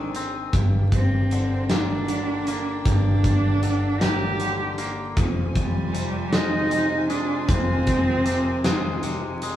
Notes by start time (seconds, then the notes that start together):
Already playing: G#1 G#2 D#3 C4 D4 G#4 C5 G#5
0.15 C4, closed hi-hat
0.52 G1 G2 D4 G4 A#4 G5, kick, closed hi-hat
0.92 C4, kick, closed hi-hat
1.31 D3, closed hi-hat
1.69 A#3 D4, snare, closed hi-hat
2.08 D3, closed hi-hat
2.47 A#3, closed hi-hat
2.85 G1 G2 D4, kick, closed hi-hat
3.24 kick, closed hi-hat
3.63 D3, closed hi-hat
4.01 A#3 G4, snare, closed hi-hat
4.40 D3, closed hi-hat
4.78 A#3, closed hi-hat
5.17 F1 F2 F4 C5 G#5, kick, closed hi-hat
5.55 G3, kick, closed hi-hat
5.94 C3, closed hi-hat
6.32 G#3 D#4, snare, closed hi-hat
6.71 C3, closed hi-hat
7.09 G#3 D4, closed hi-hat
7.47 F1 F2 C4 A#4, kick, closed hi-hat
7.87 kick, closed hi-hat
8.25 C3, closed hi-hat
8.64 G#3, snare, closed hi-hat
9.03 C3, closed hi-hat
9.42 G#3, closed hi-hat